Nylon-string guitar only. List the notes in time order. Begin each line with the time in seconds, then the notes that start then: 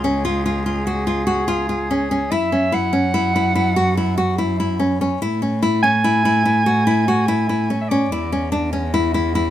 0.04 C#4
0.25 F4
0.46 F4
0.66 F4
0.87 F#4
1.07 F4
1.27 F#4
1.48 F4
1.69 F4
1.91 C#4
2.11 C#4
2.32 E4
2.52 C#4
2.72 E4
2.93 C#4
3.14 E4
3.36 E4
3.55 E4
3.76 F#4
3.97 E4
4.18 F#4
4.38 E4
4.60 E4
4.79 C#4
5.01 C#4
5.22 E4
5.42 C#4
5.62 E4
5.83 C#4
6.04 E4
6.25 E4
6.45 E4
6.66 F#4
6.87 E4
7.08 F#4
7.28 E4
7.49 E4
7.70 C#4
7.91 C#4
8.12 E4
8.32 C#4
8.52 D4
8.73 C#4
8.94 E4
9.14 E4
9.35 E4